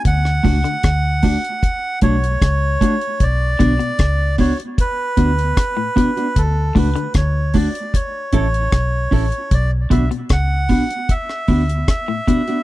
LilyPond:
<<
  \new Staff \with { instrumentName = "Melodica" } { \time 4/4 \key b \minor \tempo 4 = 76 fis''2~ fis''8 cis''4. | d''4. cis''8 b'2 | a'8 b'8 cis''8 d''8 cis''8 cis''4 cis''8 | d''8 e''8 fis''4 e''4 e''4 | }
  \new Staff \with { instrumentName = "Clean electric guitar" } { \time 4/4 \key b \minor r8 <a d' fis'>16 r8. <a d' fis'>16 r8. <a d' fis'>16 r8. <a d' fis'>16 r16 | r8 <b d' fis'>16 r8. <b d' fis'>16 r8. <b d' fis'>16 r8. <b d' fis'>16 <b d' fis'>16 | r8 <a d' fis'>16 r8. <a d' fis'>16 r8. <cis' e' a'>16 r8. <cis' e' a'>16 r16 | r8 <b d' fis'>16 r8. <b d' fis'>16 r8. <b d' fis'>16 r8. <b d' fis'>16 <b d' fis'>16 | }
  \new Staff \with { instrumentName = "Clean electric guitar" } { \clef bass \time 4/4 \key b \minor r8 a,16 d16 r2. | r8 d16 b,16 r2 r16 a,16 b,16 r16 | r8 a,16 d16 r2. | r8 d16 b,16 r2 r16 a,16 b,16 r16 | }
  \new Staff \with { instrumentName = "Fingered electric bass" } { \clef bass \time 4/4 \key b \minor d,8 cis,16 r16 d,8. r8. b,,8 cis,8 r8 | b,,8 b,,16 r16 cis,8. r8. d,8 r4 | d,8 cis,16 r16 d,8. r8. a,,8 b,,8 a,,16 r16 | b,,8 b,,16 r16 cis,8. r8. d,8 r4 | }
  \new DrumStaff \with { instrumentName = "Drums" } \drummode { \time 4/4 <hh bd>16 ss16 <hho bd>16 hh16 <hh bd ss>8 <hho bd>16 hh16 <hh bd>8 <hh bd>16 hh16 <hh bd ss>8 <hh bd>16 hh16 | <hh bd>8 <hh bd>16 hh16 <hh bd ss>8 <hho bd>16 hh16 <hh bd>8 <hh bd>16 hh16 <hh bd ss>8 <hh bd>16 hh16 | <hh bd>8 <hho bd>16 hh16 <hh bd ss>8 <hho bd>16 hh16 <hh bd>8 <hh bd>16 hh16 <hh bd ss>8 <hho bd>16 hh16 | <hh bd>8 <hh bd>16 hh16 <hh bd ss>8 <hho bd>16 hh16 <hh bd>16 ss16 <hho bd>16 hh16 <hh bd ss>8 <hh bd>16 hh16 | }
>>